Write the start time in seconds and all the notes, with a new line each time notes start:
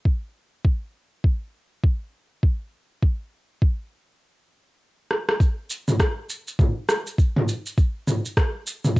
0.05 kick
0.65 kick
1.24 kick
1.84 kick
2.43 kick
3.02 kick
3.62 kick
5.11 cross-stick
5.29 cross-stick
5.40 kick, shaker
5.70 shaker
5.88 mid tom, shaker
6.00 kick, cross-stick, shaker
6.30 shaker
6.48 shaker
6.59 kick, mid tom, shaker
6.89 cross-stick, shaker
7.07 shaker
7.18 kick, shaker
7.36 mid tom
7.48 shaker
7.66 shaker
7.78 kick, shaker
8.07 mid tom, shaker
8.26 shaker
8.37 kick, cross-stick, shaker
8.67 shaker
8.85 mid tom, shaker
8.96 kick